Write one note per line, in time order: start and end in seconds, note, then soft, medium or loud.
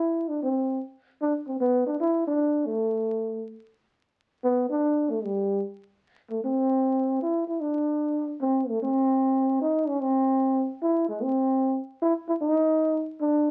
0.00 0.30 E4 medium
0.29 0.42 D4 medium
0.43 0.79 C4 medium
1.22 1.33 D4 medium
1.47 1.60 C4 medium
1.60 1.85 B3 medium
1.86 2.00 D4 medium
2.00 2.25 E4 medium
2.27 2.68 D4 medium
2.66 3.47 A3 medium
4.44 4.68 B3 medium
4.70 5.11 D4 medium
5.10 5.26 A3 medium
5.24 5.63 G3 medium
6.30 6.42 A3 medium
6.44 7.19 C4 medium
7.22 7.46 E4 medium
7.48 7.62 E4 medium
7.61 8.28 D4 medium
8.41 8.70 C4 medium
8.69 8.82 A3 medium
8.83 9.58 C4 medium
9.62 9.90 D#4 medium
9.88 10.02 C#4 medium
10.01 10.67 C4 loud
10.82 11.06 E4 medium
11.09 11.24 G#3 medium
11.23 11.79 C4 loud
12.02 12.14 E4 loud
12.28 12.34 E4 medium
12.41 13.03 D#4 loud
13.21 13.51 D4 loud